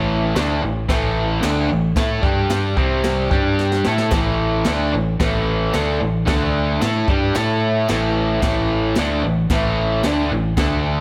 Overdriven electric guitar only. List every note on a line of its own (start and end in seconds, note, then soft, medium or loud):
0.00 0.35 A2 medium
0.00 0.35 E3 medium
0.00 0.35 A3 loud
0.36 0.62 D3 medium
0.36 0.62 A3 loud
0.36 0.62 D4 loud
0.62 0.84 A2 medium
0.62 0.84 E3 medium
0.89 1.41 A2 loud
0.89 1.42 E3 loud
0.89 1.42 A3 loud
1.41 1.68 D3 medium
1.41 1.69 A3 loud
1.41 1.69 D4 loud
1.70 1.91 A2 medium
1.70 1.91 E3 medium
1.97 2.22 A3 medium
1.97 2.23 E4 medium
1.97 2.23 A4 loud
2.22 2.76 G3 medium
2.22 2.77 D4 medium
2.22 2.77 G4 medium
2.77 3.30 C3 medium
2.77 3.30 G3 medium
2.77 3.31 C4 loud
3.31 3.84 G3 medium
3.31 3.84 D4 medium
3.31 3.85 G4 loud
3.87 4.12 A3 medium
3.87 4.12 E4 medium
3.87 4.13 A4 medium
4.13 4.65 A2 medium
4.13 4.66 E3 medium
4.13 4.66 A3 loud
4.66 4.92 D3 medium
4.66 4.93 A3 medium
4.66 4.93 D4 loud
4.93 5.15 A2 medium
4.93 5.15 E3 medium
5.20 5.73 A2 loud
5.20 5.73 E3 loud
5.20 5.73 A3 loud
5.74 6.00 D3 medium
5.74 6.00 A3 medium
5.74 6.00 D4 loud
6.01 6.22 A2 medium
6.01 6.22 E3 medium
6.26 6.80 D3 loud
6.26 6.80 A3 loud
6.26 6.81 D4 medium
6.81 7.07 A3 medium
6.81 7.07 E4 medium
6.81 7.08 A4 loud
7.09 7.34 G3 medium
7.09 7.35 D4 loud
7.09 7.35 G4 loud
7.36 7.88 A3 loud
7.36 7.89 E4 loud
7.36 7.89 A4 loud
7.90 8.40 A2 medium
7.90 8.41 E3 loud
7.90 8.41 A3 medium
8.41 8.95 A2 medium
8.41 8.95 E3 loud
8.41 8.96 A3 loud
8.98 9.23 D3 medium
8.98 9.23 A3 loud
8.98 9.24 D4 loud
9.24 9.45 A2 medium
9.24 9.46 E3 medium
9.51 10.04 A2 loud
9.51 10.04 E3 loud
9.51 10.04 A3 loud
10.05 10.30 D3 medium
10.05 10.31 A3 medium
10.05 10.31 D4 loud
10.32 10.53 A2 medium
10.32 10.53 E3 medium
10.57 11.01 D3 medium
10.57 11.01 A3 medium
10.57 11.01 D4 loud